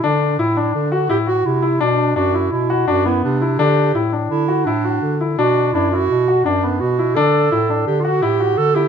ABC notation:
X:1
M:5/4
L:1/16
Q:1/4=169
K:Dmix
V:1 name="Clarinet"
D4 E4 D2 F2 G2 F2 E4 | D4 F4 E4 F2 E2 D4 | G4- G z3 E4 D6 z2 | F4 E2 F6 D4 F4 |
A8 G3/2 =F/2 ^F2 G4 A2 G2 |]
V:2 name="Grand piano"
D4 E2 D4 F2 E2 F4 E2 | D4 D2 E4 F2 D2 B,4 E2 | D4 E2 D4 F2 E2 F4 E2 | D4 D2 E4 F2 D2 B,4 E2 |
D4 E2 D4 F2 E2 F4 E2 |]
V:3 name="Bass clarinet" clef=bass
D,4 A,,4 D,4 A,,4 C,4 | B,,4 F,,4 B,,4 F,,4 C,4 | D,4 A,,4 D,4 A,,4 D,4 | B,,4 F,,4 B,,4 F,,4 B,,4 |
D,4 A,,4 D,4 A,,4 D,4 |]